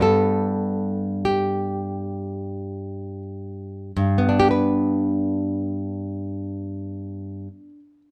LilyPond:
\new Staff \with { instrumentName = "Nylon-string guitar" } { \time 3/4 \key g \major \tempo 4 = 43 << { a'4 g'4. r8 | <g, b d' g' b'>2. | } \\ { <g, g b>2. | r2. | } >> }